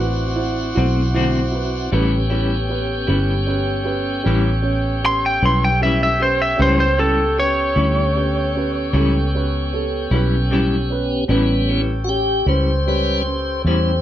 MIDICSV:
0, 0, Header, 1, 7, 480
1, 0, Start_track
1, 0, Tempo, 777202
1, 1194, Time_signature, 12, 3, 24, 8
1, 4557, Tempo, 784314
1, 8619, End_track
2, 0, Start_track
2, 0, Title_t, "Lead electric guitar"
2, 0, Program_c, 0, 29
2, 0, Note_on_c, 0, 66, 86
2, 219, Note_off_c, 0, 66, 0
2, 3124, Note_on_c, 0, 84, 102
2, 3235, Note_off_c, 0, 84, 0
2, 3248, Note_on_c, 0, 79, 107
2, 3357, Note_off_c, 0, 79, 0
2, 3369, Note_on_c, 0, 84, 86
2, 3477, Note_off_c, 0, 84, 0
2, 3486, Note_on_c, 0, 79, 105
2, 3596, Note_off_c, 0, 79, 0
2, 3600, Note_on_c, 0, 76, 95
2, 3713, Note_off_c, 0, 76, 0
2, 3725, Note_on_c, 0, 76, 94
2, 3836, Note_off_c, 0, 76, 0
2, 3844, Note_on_c, 0, 72, 90
2, 3955, Note_off_c, 0, 72, 0
2, 3962, Note_on_c, 0, 76, 91
2, 4075, Note_off_c, 0, 76, 0
2, 4088, Note_on_c, 0, 72, 94
2, 4193, Note_off_c, 0, 72, 0
2, 4201, Note_on_c, 0, 72, 107
2, 4314, Note_off_c, 0, 72, 0
2, 4319, Note_on_c, 0, 69, 98
2, 4550, Note_off_c, 0, 69, 0
2, 4567, Note_on_c, 0, 73, 89
2, 5971, Note_off_c, 0, 73, 0
2, 8619, End_track
3, 0, Start_track
3, 0, Title_t, "Horn section"
3, 0, Program_c, 1, 61
3, 0, Note_on_c, 1, 66, 79
3, 0, Note_on_c, 1, 72, 67
3, 0, Note_on_c, 1, 74, 75
3, 0, Note_on_c, 1, 78, 86
3, 1171, Note_off_c, 1, 66, 0
3, 1171, Note_off_c, 1, 78, 0
3, 1172, Note_off_c, 1, 74, 0
3, 1173, Note_off_c, 1, 72, 0
3, 1189, Note_on_c, 1, 73, 78
3, 1190, Note_on_c, 1, 69, 74
3, 1196, Note_on_c, 1, 67, 78
3, 1196, Note_on_c, 1, 79, 85
3, 6846, Note_off_c, 1, 67, 0
3, 6846, Note_off_c, 1, 69, 0
3, 6846, Note_off_c, 1, 73, 0
3, 6846, Note_off_c, 1, 79, 0
3, 6950, Note_on_c, 1, 67, 72
3, 6950, Note_on_c, 1, 79, 78
3, 6952, Note_on_c, 1, 69, 67
3, 6955, Note_on_c, 1, 73, 64
3, 8619, Note_off_c, 1, 67, 0
3, 8619, Note_off_c, 1, 69, 0
3, 8619, Note_off_c, 1, 73, 0
3, 8619, Note_off_c, 1, 79, 0
3, 8619, End_track
4, 0, Start_track
4, 0, Title_t, "Upright piano"
4, 0, Program_c, 2, 0
4, 0, Note_on_c, 2, 64, 63
4, 0, Note_on_c, 2, 66, 60
4, 0, Note_on_c, 2, 71, 70
4, 172, Note_off_c, 2, 64, 0
4, 176, Note_off_c, 2, 66, 0
4, 177, Note_off_c, 2, 71, 0
4, 221, Note_on_c, 2, 64, 65
4, 227, Note_on_c, 2, 66, 55
4, 231, Note_on_c, 2, 72, 70
4, 408, Note_off_c, 2, 64, 0
4, 411, Note_off_c, 2, 66, 0
4, 413, Note_off_c, 2, 72, 0
4, 462, Note_on_c, 2, 64, 69
4, 469, Note_on_c, 2, 66, 58
4, 478, Note_on_c, 2, 72, 81
4, 648, Note_off_c, 2, 64, 0
4, 652, Note_off_c, 2, 66, 0
4, 656, Note_off_c, 2, 72, 0
4, 704, Note_on_c, 2, 64, 69
4, 707, Note_on_c, 2, 66, 53
4, 717, Note_on_c, 2, 72, 70
4, 889, Note_off_c, 2, 64, 0
4, 891, Note_off_c, 2, 66, 0
4, 896, Note_off_c, 2, 72, 0
4, 938, Note_on_c, 2, 64, 64
4, 948, Note_on_c, 2, 66, 59
4, 954, Note_on_c, 2, 71, 70
4, 1126, Note_off_c, 2, 64, 0
4, 1131, Note_off_c, 2, 66, 0
4, 1134, Note_off_c, 2, 71, 0
4, 1184, Note_on_c, 2, 61, 82
4, 1189, Note_on_c, 2, 67, 78
4, 1194, Note_on_c, 2, 71, 88
4, 1368, Note_off_c, 2, 61, 0
4, 1371, Note_off_c, 2, 67, 0
4, 1374, Note_off_c, 2, 71, 0
4, 1415, Note_on_c, 2, 61, 63
4, 1423, Note_on_c, 2, 67, 59
4, 1430, Note_on_c, 2, 71, 62
4, 1604, Note_off_c, 2, 61, 0
4, 1608, Note_off_c, 2, 67, 0
4, 1611, Note_off_c, 2, 71, 0
4, 1658, Note_on_c, 2, 61, 67
4, 1664, Note_on_c, 2, 67, 54
4, 1672, Note_on_c, 2, 71, 67
4, 1845, Note_off_c, 2, 61, 0
4, 1848, Note_off_c, 2, 67, 0
4, 1852, Note_off_c, 2, 71, 0
4, 1899, Note_on_c, 2, 61, 66
4, 1901, Note_on_c, 2, 67, 71
4, 1912, Note_on_c, 2, 71, 73
4, 2085, Note_off_c, 2, 61, 0
4, 2087, Note_off_c, 2, 67, 0
4, 2092, Note_off_c, 2, 71, 0
4, 2140, Note_on_c, 2, 61, 75
4, 2147, Note_on_c, 2, 67, 59
4, 2149, Note_on_c, 2, 71, 67
4, 2326, Note_off_c, 2, 61, 0
4, 2329, Note_off_c, 2, 67, 0
4, 2330, Note_off_c, 2, 71, 0
4, 2369, Note_on_c, 2, 61, 72
4, 2378, Note_on_c, 2, 67, 64
4, 2381, Note_on_c, 2, 71, 68
4, 2560, Note_off_c, 2, 61, 0
4, 2565, Note_off_c, 2, 67, 0
4, 2567, Note_off_c, 2, 71, 0
4, 2614, Note_on_c, 2, 61, 72
4, 2617, Note_on_c, 2, 67, 66
4, 2626, Note_on_c, 2, 71, 80
4, 2803, Note_off_c, 2, 61, 0
4, 2804, Note_off_c, 2, 67, 0
4, 2809, Note_off_c, 2, 71, 0
4, 2853, Note_on_c, 2, 61, 68
4, 2857, Note_on_c, 2, 67, 60
4, 2865, Note_on_c, 2, 73, 65
4, 3043, Note_off_c, 2, 61, 0
4, 3045, Note_off_c, 2, 67, 0
4, 3048, Note_off_c, 2, 73, 0
4, 3101, Note_on_c, 2, 61, 51
4, 3108, Note_on_c, 2, 67, 49
4, 3114, Note_on_c, 2, 71, 60
4, 3287, Note_off_c, 2, 61, 0
4, 3290, Note_off_c, 2, 67, 0
4, 3293, Note_off_c, 2, 71, 0
4, 3343, Note_on_c, 2, 61, 62
4, 3348, Note_on_c, 2, 67, 55
4, 3354, Note_on_c, 2, 71, 69
4, 3528, Note_off_c, 2, 61, 0
4, 3530, Note_off_c, 2, 67, 0
4, 3533, Note_off_c, 2, 71, 0
4, 3584, Note_on_c, 2, 61, 61
4, 3589, Note_on_c, 2, 67, 57
4, 3594, Note_on_c, 2, 71, 65
4, 3769, Note_off_c, 2, 61, 0
4, 3771, Note_off_c, 2, 67, 0
4, 3774, Note_off_c, 2, 71, 0
4, 3817, Note_on_c, 2, 61, 57
4, 3825, Note_on_c, 2, 67, 47
4, 3833, Note_on_c, 2, 71, 61
4, 4006, Note_off_c, 2, 61, 0
4, 4010, Note_off_c, 2, 67, 0
4, 4013, Note_off_c, 2, 71, 0
4, 4055, Note_on_c, 2, 61, 77
4, 4063, Note_on_c, 2, 67, 71
4, 4069, Note_on_c, 2, 71, 83
4, 4245, Note_off_c, 2, 61, 0
4, 4249, Note_off_c, 2, 67, 0
4, 4252, Note_off_c, 2, 71, 0
4, 4306, Note_on_c, 2, 61, 57
4, 4313, Note_on_c, 2, 67, 53
4, 4313, Note_on_c, 2, 71, 66
4, 4491, Note_off_c, 2, 61, 0
4, 4494, Note_off_c, 2, 67, 0
4, 4494, Note_off_c, 2, 71, 0
4, 4553, Note_on_c, 2, 61, 58
4, 4558, Note_on_c, 2, 67, 54
4, 4564, Note_on_c, 2, 71, 65
4, 4733, Note_off_c, 2, 61, 0
4, 4735, Note_off_c, 2, 67, 0
4, 4739, Note_off_c, 2, 71, 0
4, 4790, Note_on_c, 2, 61, 62
4, 4796, Note_on_c, 2, 67, 49
4, 4804, Note_on_c, 2, 73, 60
4, 4971, Note_off_c, 2, 61, 0
4, 4974, Note_off_c, 2, 67, 0
4, 4978, Note_off_c, 2, 73, 0
4, 5029, Note_on_c, 2, 61, 55
4, 5038, Note_on_c, 2, 67, 56
4, 5040, Note_on_c, 2, 71, 60
4, 5210, Note_off_c, 2, 61, 0
4, 5214, Note_off_c, 2, 67, 0
4, 5216, Note_off_c, 2, 71, 0
4, 5274, Note_on_c, 2, 61, 64
4, 5283, Note_on_c, 2, 67, 61
4, 5291, Note_on_c, 2, 71, 64
4, 5452, Note_off_c, 2, 61, 0
4, 5457, Note_off_c, 2, 67, 0
4, 5461, Note_off_c, 2, 71, 0
4, 5515, Note_on_c, 2, 61, 67
4, 5522, Note_on_c, 2, 67, 72
4, 5527, Note_on_c, 2, 69, 75
4, 5692, Note_off_c, 2, 61, 0
4, 5696, Note_off_c, 2, 67, 0
4, 5698, Note_off_c, 2, 69, 0
4, 5761, Note_on_c, 2, 61, 72
4, 5764, Note_on_c, 2, 67, 59
4, 5770, Note_on_c, 2, 71, 69
4, 5935, Note_off_c, 2, 61, 0
4, 5937, Note_off_c, 2, 67, 0
4, 5940, Note_off_c, 2, 71, 0
4, 5994, Note_on_c, 2, 61, 59
4, 5999, Note_on_c, 2, 67, 57
4, 6006, Note_on_c, 2, 69, 72
4, 6171, Note_off_c, 2, 61, 0
4, 6174, Note_off_c, 2, 67, 0
4, 6178, Note_off_c, 2, 69, 0
4, 6238, Note_on_c, 2, 61, 76
4, 6243, Note_on_c, 2, 67, 70
4, 6245, Note_on_c, 2, 71, 80
4, 6414, Note_off_c, 2, 61, 0
4, 6416, Note_off_c, 2, 67, 0
4, 6417, Note_off_c, 2, 71, 0
4, 6475, Note_on_c, 2, 61, 69
4, 6480, Note_on_c, 2, 67, 62
4, 6486, Note_on_c, 2, 71, 72
4, 6652, Note_off_c, 2, 61, 0
4, 6655, Note_off_c, 2, 67, 0
4, 6658, Note_off_c, 2, 71, 0
4, 6712, Note_on_c, 2, 61, 62
4, 6718, Note_on_c, 2, 67, 59
4, 6723, Note_on_c, 2, 71, 80
4, 6891, Note_off_c, 2, 61, 0
4, 6894, Note_off_c, 2, 67, 0
4, 6896, Note_off_c, 2, 71, 0
4, 6948, Note_on_c, 2, 61, 79
4, 6956, Note_on_c, 2, 67, 68
4, 6962, Note_on_c, 2, 71, 83
4, 7129, Note_off_c, 2, 61, 0
4, 7133, Note_off_c, 2, 67, 0
4, 7136, Note_off_c, 2, 71, 0
4, 7187, Note_on_c, 2, 61, 61
4, 7195, Note_on_c, 2, 67, 50
4, 7201, Note_on_c, 2, 71, 62
4, 7368, Note_off_c, 2, 61, 0
4, 7373, Note_off_c, 2, 67, 0
4, 7375, Note_off_c, 2, 71, 0
4, 7430, Note_on_c, 2, 61, 50
4, 7439, Note_on_c, 2, 67, 47
4, 7447, Note_on_c, 2, 73, 57
4, 7610, Note_off_c, 2, 61, 0
4, 7615, Note_off_c, 2, 67, 0
4, 7619, Note_off_c, 2, 73, 0
4, 7669, Note_on_c, 2, 61, 58
4, 7674, Note_on_c, 2, 67, 48
4, 7683, Note_on_c, 2, 71, 54
4, 7850, Note_off_c, 2, 61, 0
4, 7853, Note_off_c, 2, 67, 0
4, 7857, Note_off_c, 2, 71, 0
4, 7906, Note_on_c, 2, 61, 49
4, 7916, Note_on_c, 2, 67, 47
4, 7922, Note_on_c, 2, 71, 59
4, 8089, Note_off_c, 2, 61, 0
4, 8094, Note_off_c, 2, 67, 0
4, 8097, Note_off_c, 2, 71, 0
4, 8153, Note_on_c, 2, 61, 49
4, 8158, Note_on_c, 2, 67, 43
4, 8164, Note_on_c, 2, 71, 48
4, 8333, Note_off_c, 2, 61, 0
4, 8336, Note_off_c, 2, 67, 0
4, 8339, Note_off_c, 2, 71, 0
4, 8397, Note_on_c, 2, 61, 53
4, 8407, Note_on_c, 2, 67, 45
4, 8415, Note_on_c, 2, 73, 64
4, 8576, Note_off_c, 2, 61, 0
4, 8580, Note_off_c, 2, 67, 0
4, 8585, Note_off_c, 2, 73, 0
4, 8619, End_track
5, 0, Start_track
5, 0, Title_t, "Clean electric guitar"
5, 0, Program_c, 3, 27
5, 468, Note_on_c, 3, 66, 61
5, 476, Note_on_c, 3, 60, 50
5, 480, Note_on_c, 3, 57, 52
5, 615, Note_off_c, 3, 66, 0
5, 619, Note_off_c, 3, 60, 0
5, 621, Note_off_c, 3, 57, 0
5, 704, Note_on_c, 3, 50, 74
5, 711, Note_on_c, 3, 57, 71
5, 714, Note_on_c, 3, 60, 85
5, 718, Note_on_c, 3, 66, 83
5, 853, Note_off_c, 3, 50, 0
5, 857, Note_off_c, 3, 57, 0
5, 858, Note_off_c, 3, 60, 0
5, 860, Note_off_c, 3, 66, 0
5, 1184, Note_on_c, 3, 45, 88
5, 1187, Note_on_c, 3, 55, 87
5, 1192, Note_on_c, 3, 61, 96
5, 1192, Note_on_c, 3, 64, 93
5, 1333, Note_off_c, 3, 45, 0
5, 1334, Note_off_c, 3, 55, 0
5, 1336, Note_off_c, 3, 64, 0
5, 1337, Note_off_c, 3, 61, 0
5, 1421, Note_on_c, 3, 64, 64
5, 1428, Note_on_c, 3, 61, 57
5, 1435, Note_on_c, 3, 55, 45
5, 1571, Note_off_c, 3, 64, 0
5, 1575, Note_off_c, 3, 61, 0
5, 1578, Note_off_c, 3, 55, 0
5, 1899, Note_on_c, 3, 64, 57
5, 1908, Note_on_c, 3, 61, 51
5, 1914, Note_on_c, 3, 55, 53
5, 2050, Note_off_c, 3, 64, 0
5, 2054, Note_off_c, 3, 61, 0
5, 2057, Note_off_c, 3, 55, 0
5, 2627, Note_on_c, 3, 45, 85
5, 2633, Note_on_c, 3, 55, 86
5, 2633, Note_on_c, 3, 61, 88
5, 2638, Note_on_c, 3, 64, 96
5, 2773, Note_off_c, 3, 45, 0
5, 2776, Note_off_c, 3, 55, 0
5, 2776, Note_off_c, 3, 61, 0
5, 2779, Note_off_c, 3, 64, 0
5, 3354, Note_on_c, 3, 64, 56
5, 3358, Note_on_c, 3, 61, 47
5, 3365, Note_on_c, 3, 55, 46
5, 3497, Note_off_c, 3, 64, 0
5, 3500, Note_off_c, 3, 61, 0
5, 3503, Note_off_c, 3, 55, 0
5, 3593, Note_on_c, 3, 45, 60
5, 3597, Note_on_c, 3, 55, 72
5, 3600, Note_on_c, 3, 61, 65
5, 3607, Note_on_c, 3, 64, 74
5, 3737, Note_off_c, 3, 45, 0
5, 3739, Note_off_c, 3, 55, 0
5, 3741, Note_off_c, 3, 61, 0
5, 3744, Note_off_c, 3, 64, 0
5, 4070, Note_on_c, 3, 45, 79
5, 4075, Note_on_c, 3, 55, 90
5, 4075, Note_on_c, 3, 61, 86
5, 4082, Note_on_c, 3, 64, 79
5, 4216, Note_off_c, 3, 45, 0
5, 4219, Note_off_c, 3, 55, 0
5, 4219, Note_off_c, 3, 61, 0
5, 4222, Note_off_c, 3, 64, 0
5, 4312, Note_on_c, 3, 64, 56
5, 4322, Note_on_c, 3, 61, 52
5, 4325, Note_on_c, 3, 55, 51
5, 4458, Note_off_c, 3, 64, 0
5, 4463, Note_off_c, 3, 61, 0
5, 4464, Note_off_c, 3, 55, 0
5, 4788, Note_on_c, 3, 64, 53
5, 4795, Note_on_c, 3, 61, 49
5, 4799, Note_on_c, 3, 55, 42
5, 4934, Note_off_c, 3, 64, 0
5, 4938, Note_off_c, 3, 61, 0
5, 4940, Note_off_c, 3, 55, 0
5, 5506, Note_on_c, 3, 45, 86
5, 5509, Note_on_c, 3, 55, 88
5, 5510, Note_on_c, 3, 61, 95
5, 5514, Note_on_c, 3, 64, 85
5, 5652, Note_off_c, 3, 45, 0
5, 5654, Note_off_c, 3, 55, 0
5, 5654, Note_off_c, 3, 61, 0
5, 5656, Note_off_c, 3, 64, 0
5, 6230, Note_on_c, 3, 64, 65
5, 6237, Note_on_c, 3, 61, 59
5, 6243, Note_on_c, 3, 55, 54
5, 6374, Note_off_c, 3, 64, 0
5, 6377, Note_off_c, 3, 61, 0
5, 6380, Note_off_c, 3, 55, 0
5, 6471, Note_on_c, 3, 45, 77
5, 6474, Note_on_c, 3, 55, 89
5, 6482, Note_on_c, 3, 61, 79
5, 6484, Note_on_c, 3, 64, 75
5, 6614, Note_off_c, 3, 45, 0
5, 6616, Note_off_c, 3, 55, 0
5, 6619, Note_off_c, 3, 61, 0
5, 6621, Note_off_c, 3, 64, 0
5, 6947, Note_on_c, 3, 45, 81
5, 6952, Note_on_c, 3, 55, 86
5, 6952, Note_on_c, 3, 61, 82
5, 6956, Note_on_c, 3, 64, 91
5, 7092, Note_off_c, 3, 45, 0
5, 7095, Note_off_c, 3, 55, 0
5, 7095, Note_off_c, 3, 61, 0
5, 7096, Note_off_c, 3, 64, 0
5, 7193, Note_on_c, 3, 64, 53
5, 7199, Note_on_c, 3, 61, 55
5, 7208, Note_on_c, 3, 55, 39
5, 7336, Note_off_c, 3, 64, 0
5, 7339, Note_off_c, 3, 61, 0
5, 7343, Note_off_c, 3, 55, 0
5, 7673, Note_on_c, 3, 64, 54
5, 7680, Note_on_c, 3, 61, 43
5, 7687, Note_on_c, 3, 55, 43
5, 7816, Note_off_c, 3, 64, 0
5, 7819, Note_off_c, 3, 61, 0
5, 7823, Note_off_c, 3, 55, 0
5, 8403, Note_on_c, 3, 45, 66
5, 8403, Note_on_c, 3, 55, 68
5, 8408, Note_on_c, 3, 61, 78
5, 8408, Note_on_c, 3, 64, 73
5, 8542, Note_off_c, 3, 45, 0
5, 8543, Note_off_c, 3, 55, 0
5, 8545, Note_off_c, 3, 61, 0
5, 8545, Note_off_c, 3, 64, 0
5, 8619, End_track
6, 0, Start_track
6, 0, Title_t, "Tonewheel organ"
6, 0, Program_c, 4, 16
6, 0, Note_on_c, 4, 60, 66
6, 0, Note_on_c, 4, 64, 68
6, 0, Note_on_c, 4, 66, 74
6, 1173, Note_off_c, 4, 60, 0
6, 1173, Note_off_c, 4, 66, 0
6, 1175, Note_off_c, 4, 64, 0
6, 1190, Note_on_c, 4, 61, 69
6, 1191, Note_on_c, 4, 59, 68
6, 1192, Note_on_c, 4, 67, 68
6, 4047, Note_off_c, 4, 61, 0
6, 4048, Note_off_c, 4, 59, 0
6, 4048, Note_off_c, 4, 67, 0
6, 4068, Note_on_c, 4, 67, 69
6, 4069, Note_on_c, 4, 61, 72
6, 4071, Note_on_c, 4, 59, 70
6, 6922, Note_off_c, 4, 61, 0
6, 6922, Note_off_c, 4, 67, 0
6, 6923, Note_off_c, 4, 59, 0
6, 6950, Note_on_c, 4, 55, 52
6, 6953, Note_on_c, 4, 59, 44
6, 6959, Note_on_c, 4, 61, 56
6, 7269, Note_off_c, 4, 55, 0
6, 7271, Note_off_c, 4, 59, 0
6, 7274, Note_off_c, 4, 61, 0
6, 7412, Note_on_c, 4, 66, 77
6, 7439, Note_off_c, 4, 66, 0
6, 7441, Note_on_c, 4, 67, 107
6, 7669, Note_off_c, 4, 67, 0
6, 7684, Note_on_c, 4, 72, 71
6, 7922, Note_on_c, 4, 55, 45
6, 7924, Note_on_c, 4, 71, 45
6, 7930, Note_on_c, 4, 61, 49
6, 8134, Note_off_c, 4, 55, 0
6, 8135, Note_off_c, 4, 71, 0
6, 8138, Note_off_c, 4, 61, 0
6, 8378, Note_off_c, 4, 72, 0
6, 8408, Note_on_c, 4, 72, 76
6, 8619, Note_off_c, 4, 72, 0
6, 8619, End_track
7, 0, Start_track
7, 0, Title_t, "Fingered electric bass"
7, 0, Program_c, 5, 33
7, 0, Note_on_c, 5, 33, 87
7, 455, Note_off_c, 5, 33, 0
7, 477, Note_on_c, 5, 35, 102
7, 1173, Note_off_c, 5, 35, 0
7, 1189, Note_on_c, 5, 33, 90
7, 1889, Note_off_c, 5, 33, 0
7, 1905, Note_on_c, 5, 31, 82
7, 2606, Note_off_c, 5, 31, 0
7, 2630, Note_on_c, 5, 33, 87
7, 3330, Note_off_c, 5, 33, 0
7, 3350, Note_on_c, 5, 35, 101
7, 4051, Note_off_c, 5, 35, 0
7, 4072, Note_on_c, 5, 37, 90
7, 4771, Note_off_c, 5, 37, 0
7, 4791, Note_on_c, 5, 38, 89
7, 5488, Note_off_c, 5, 38, 0
7, 5508, Note_on_c, 5, 37, 94
7, 6207, Note_off_c, 5, 37, 0
7, 6229, Note_on_c, 5, 35, 97
7, 6927, Note_off_c, 5, 35, 0
7, 6951, Note_on_c, 5, 33, 85
7, 7649, Note_off_c, 5, 33, 0
7, 7669, Note_on_c, 5, 37, 84
7, 8370, Note_off_c, 5, 37, 0
7, 8392, Note_on_c, 5, 40, 86
7, 8619, Note_off_c, 5, 40, 0
7, 8619, End_track
0, 0, End_of_file